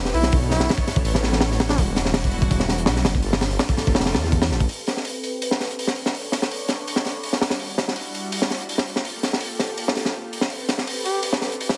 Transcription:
Already playing: E1
0.05 snare
0.14 B1 E4, open hi-hat
0.23 snare
0.32 B1 D4 A4 B4 C#5, kick, open hi-hat
0.50 E4, snare, open hi-hat
0.59 B1 D4 A4 B4 C#5, snare
0.69 snare, open hi-hat
0.78 kick
0.87 snare, open hi-hat
0.96 A1, kick
1.05 open hi-hat
1.15 snare
1.24 snare, open hi-hat
1.33 snare
1.41 snare, open hi-hat
1.51 snare
1.60 snare, open hi-hat
1.69 D4, snare, open hi-hat
1.78 E1 G3 D4 E4 F#4, kick, open hi-hat
1.96 snare, open hi-hat
2.05 G3 D4 E4 F#4, snare
2.14 snare, open hi-hat
2.24 kick
2.31 open hi-hat
2.42 kick
2.51 kick, open hi-hat
2.60 snare
2.69 snare, open hi-hat
2.78 closed hi-hat
2.86 B1 G3 D4 E4 F#4, snare, open hi-hat
2.96 snare
3.05 F#1, snare, open hi-hat
3.15 kick
3.22 G1 A#3 F4 G4 A4, open hi-hat
3.33 snare, open hi-hat
3.41 snare, open hi-hat
3.51 G1 A#3 F4 G4 A4, open hi-hat
3.59 snare, open hi-hat
3.69 kick
3.77 snare, open hi-hat
3.87 F1, kick
3.95 snare, open hi-hat
4.00 snare, open hi-hat
4.05 snare, open hi-hat
4.14 E2, snare, open hi-hat
4.24 snare
4.32 kick, open hi-hat
4.42 snare, open hi-hat
4.50 A1 A#3 F4 G4 A4, snare
4.60 kick, open hi-hat
4.69 C4 G4 A4 B4, open hi-hat
4.87 snare, open hi-hat
4.97 snare
5.05 open hi-hat
5.23 open hi-hat
5.42 open hi-hat
5.51 snare
5.60 snare, open hi-hat
5.71 closed hi-hat
5.79 open hi-hat
5.87 snare
5.96 open hi-hat
6.06 snare
6.14 D4 A4 B4 C#5, open hi-hat
6.32 snare, open hi-hat
6.42 snare
6.51 open hi-hat
6.68 snare, open hi-hat
6.87 open hi-hat
6.96 snare
7.05 snare, open hi-hat
7.23 open hi-hat
7.33 snare
7.41 snare, open hi-hat
7.50 snare, open hi-hat
7.60 G3 D4 E4 F#4, open hi-hat
7.78 snare, open hi-hat
7.88 snare
7.96 open hi-hat
8.15 open hi-hat
8.32 open hi-hat
8.42 snare
8.50 snare, open hi-hat
8.60 closed hi-hat
8.69 open hi-hat
8.78 snare
8.87 open hi-hat
8.96 snare
9.05 A#3 F4 G4 A4, open hi-hat
9.23 snare, open hi-hat
9.33 snare
9.41 open hi-hat
9.59 snare, open hi-hat
9.78 open hi-hat
9.88 snare
9.95 snare, open hi-hat
10.05 snare
10.33 open hi-hat
10.41 snare
10.50 C4 G4 A4 B4, open hi-hat
10.69 snare, open hi-hat
10.78 snare
10.87 open hi-hat
11.05 G4, open hi-hat
11.23 open hi-hat
11.33 snare
11.41 snare, open hi-hat
11.52 closed hi-hat
11.60 open hi-hat
11.69 snare

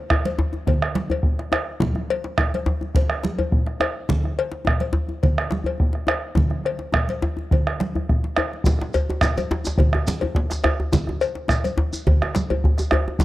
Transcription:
0.10 bombo rim, bombo low, high conga, djembe tone
0.25 cowbell, high conga
0.39 djembe slap, djembe bass
0.53 djembe tone, high conga
0.67 bombo low, cowbell, low conga
0.82 bombo rim
0.95 djembe slap, high conga
1.10 cowbell, djembe tone, djembe bass
1.23 bombo low, djembe slap
1.39 bombo rim, djembe slap
1.52 bombo rim, cowbell, djembe tone
1.80 bombo low, djembe slap, high conga, djembe bass, low conga
1.95 bombo rim, djembe tone
2.10 cowbell
2.24 djembe slap
2.38 bombo rim, bombo low, djembe tone, high conga
2.54 cowbell, high conga
2.66 djembe slap, djembe bass
2.81 djembe tone, high conga
2.95 bombo low, cowbell, low conga
3.10 bombo rim
3.23 djembe slap, high conga
3.39 cowbell, djembe tone, djembe bass
3.52 bombo low, djembe slap
3.66 bombo rim, djembe slap
3.80 bombo rim, cowbell, djembe tone
4.09 bombo low, djembe slap, high conga, djembe bass, low conga
4.24 bombo rim, djembe tone
4.39 cowbell
4.52 djembe slap
4.65 bombo rim, bombo low, djembe tone, high conga
4.80 cowbell, high conga
4.93 djembe slap, djembe bass
5.09 djembe tone, high conga
5.23 bombo low, cowbell, low conga
5.38 bombo rim
5.51 djembe slap, high conga
5.64 cowbell, djembe bass
5.78 bombo low, djembe slap
5.93 bombo rim, djembe slap
6.07 bombo rim, cowbell, djembe tone
6.35 bombo low, djembe slap, high conga, djembe bass, low conga
6.50 bombo rim, djembe tone
6.64 bombo rim, cowbell, djembe slap
6.79 djembe slap
6.92 bombo rim, bombo low, djembe slap, djembe tone, high conga
7.09 cowbell, high conga
7.22 bombo rim, djembe slap, high conga, djembe bass
7.37 djembe slap, djembe tone, high conga
7.51 bombo low, cowbell, high conga, low conga
7.66 bombo rim, djembe slap
7.80 djembe slap, high conga
7.95 bombo rim, djembe tone, djembe bass
8.09 bombo rim, bombo low, djembe slap, high conga
8.24 djembe slap, high conga
8.36 bombo rim, cowbell, djembe tone, high conga
8.52 bombo rim, high conga
8.64 bombo low, djembe slap, high conga, low conga, djembe bass, shekere
8.79 bombo rim, djembe slap, djembe tone
8.94 cowbell, djembe bass, shekere
9.10 djembe slap, djembe tone
9.21 bombo rim, bombo low, djembe slap, djembe tone, high conga, shekere
9.37 cowbell, djembe tone, high conga, shekere
9.51 djembe slap, djembe bass
9.65 djembe slap, djembe tone, high conga, shekere
9.78 bombo low, cowbell, djembe bass, low conga
9.93 bombo rim, djembe tone
10.07 djembe slap, high conga, shekere
10.21 cowbell, djembe tone, djembe bass
10.35 bombo low, djembe slap
10.50 bombo rim, djembe slap, shekere
10.64 bombo rim, cowbell, djembe tone, djembe bass
10.80 djembe tone
10.92 bombo low, djembe slap, high conga, djembe bass, low conga, shekere
11.07 bombo rim, djembe tone
11.09 djembe tone
11.21 cowbell, shekere
11.35 djembe slap
11.48 bombo rim, bombo low, djembe tone, high conga, shekere
11.64 cowbell, high conga, shekere
11.78 djembe slap, djembe bass
11.93 djembe tone, high conga, shekere
12.07 bombo low, cowbell, low conga, djembe bass
12.22 bombo rim, djembe tone
12.35 djembe slap, high conga, shekere
12.50 cowbell, djembe tone, djembe bass
12.64 bombo low, djembe slap, djembe tone
12.78 bombo rim, djembe slap, djembe tone, shekere
12.91 bombo rim, cowbell, djembe tone, djembe bass
13.08 djembe tone
13.19 bombo low, djembe slap, high conga, djembe bass, low conga, shekere

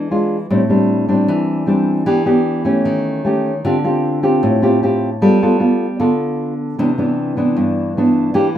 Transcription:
Already playing: E3
0.11 G#3 D4 F4
0.50 A2 G3 C4 D4
0.69 G3 C4 D4
1.08 G3 C4 D4
1.28 E3
1.66 G3 C4 D4
2.06 E3 B3 D4 G4
2.26 B3 D4 G4
2.65 A3 C#4 G4
2.85 D#3
3.25 A3 C#4 G4
3.65 D3 C4 F4 G4
3.84 C4 F4 G4
4.23 C4 F4 G4
4.43 A2
4.62 C4 F4 G4
4.83 C4 F4 G4
5.21 G3 B3 F4 A4
5.42 B3 F4 A4
5.60 B3 F4 A4
6.00 D3 B3 F4 A4
6.79 C3 E3 B3 D4
6.98 E3 B3 D4
7.37 E3 B3 D4
7.57 G2
7.97 E3 B3 D4
8.34 E3 A#3 D4 G4

